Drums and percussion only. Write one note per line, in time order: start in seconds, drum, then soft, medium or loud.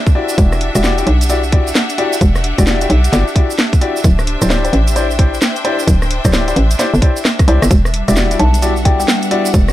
0.07 kick loud
0.07 shaker soft
0.29 shaker medium
0.38 kick loud
0.38 closed hi-hat medium
0.38 shaker medium
0.52 cross-stick medium
0.52 shaker soft
0.61 open hi-hat medium
0.75 cross-stick soft
0.75 closed hi-hat medium
0.75 shaker medium
0.84 snare loud
0.84 shaker medium
0.98 closed hi-hat medium
0.98 shaker soft
1.07 open hi-hat loud
1.21 closed hi-hat medium
1.21 shaker medium
1.29 closed hi-hat medium
1.29 shaker medium
1.43 shaker soft
1.52 kick loud
1.52 open hi-hat loud
1.67 shaker medium
1.75 snare loud
1.75 shaker medium
1.89 closed hi-hat medium
1.89 shaker soft
1.98 open hi-hat loud
2.13 shaker medium
2.21 kick loud
2.21 closed hi-hat medium
2.21 shaker medium
2.35 cross-stick medium
2.35 shaker soft
2.44 open hi-hat loud
2.58 kick medium
2.58 cross-stick soft
2.58 closed hi-hat medium
2.58 shaker medium
2.67 snare loud
2.67 shaker medium
2.81 closed hi-hat medium
2.81 shaker soft
2.90 open hi-hat loud
3.04 closed hi-hat medium
3.04 shaker medium
3.13 snare medium
3.13 closed hi-hat medium
3.13 shaker medium
3.28 shaker soft
3.36 kick loud
3.36 open hi-hat loud
3.50 shaker medium
3.58 snare loud
3.58 shaker medium
3.73 kick loud
3.73 closed hi-hat medium
3.73 shaker soft
3.81 open hi-hat loud
3.96 shaker medium
4.04 kick loud
4.04 closed hi-hat medium
4.04 shaker medium
4.19 cross-stick medium
4.19 shaker soft
4.27 open hi-hat loud
4.42 cross-stick medium
4.42 closed hi-hat medium
4.42 shaker medium
4.50 snare loud
4.50 shaker medium
4.65 closed hi-hat medium
4.65 shaker soft
4.73 open hi-hat loud
4.88 closed hi-hat medium
4.88 shaker medium
4.96 closed hi-hat medium
4.96 shaker medium
5.11 shaker soft
5.19 kick loud
5.19 open hi-hat loud
5.34 shaker medium
5.42 snare loud
5.42 shaker medium
5.56 closed hi-hat medium
5.56 shaker soft
5.65 open hi-hat loud
5.79 shaker medium
5.87 kick loud
5.87 closed hi-hat medium
5.87 shaker medium
6.02 cross-stick medium
6.02 shaker soft
6.11 open hi-hat loud
6.25 kick medium
6.25 cross-stick medium
6.25 closed hi-hat medium
6.25 shaker medium
6.33 snare loud
6.33 shaker medium
6.48 closed hi-hat medium
6.48 shaker soft
6.56 open hi-hat loud
6.71 closed hi-hat medium
6.71 shaker medium
6.79 snare medium
6.79 closed hi-hat medium
6.79 shaker medium
6.94 shaker soft
7.02 kick loud
7.02 open hi-hat loud
7.17 closed hi-hat soft
7.17 shaker medium
7.25 cross-stick medium
7.25 snare loud
7.25 shaker medium
7.39 kick loud
7.39 cross-stick medium
7.39 closed hi-hat medium
7.39 shaker soft
7.48 open hi-hat loud
7.62 cross-stick medium
7.62 closed hi-hat soft
7.62 shaker medium
7.71 kick loud
7.71 closed hi-hat medium
7.71 shaker medium
7.85 cross-stick medium
7.85 shaker soft
7.94 open hi-hat loud
8.08 cross-stick medium
8.08 closed hi-hat medium
8.08 shaker medium
8.16 snare loud
8.16 shaker medium
8.31 closed hi-hat medium
8.31 shaker soft
8.40 open hi-hat loud
8.54 closed hi-hat medium
8.54 shaker medium
8.62 closed hi-hat medium
8.62 shaker medium
8.77 shaker soft
8.85 kick loud
8.85 open hi-hat loud
9.00 shaker medium
9.08 snare loud
9.08 shaker medium
9.22 closed hi-hat medium
9.22 shaker soft
9.31 open hi-hat loud
9.45 shaker medium
9.54 kick loud
9.54 closed hi-hat medium
9.54 shaker medium
9.68 cross-stick medium
9.68 shaker soft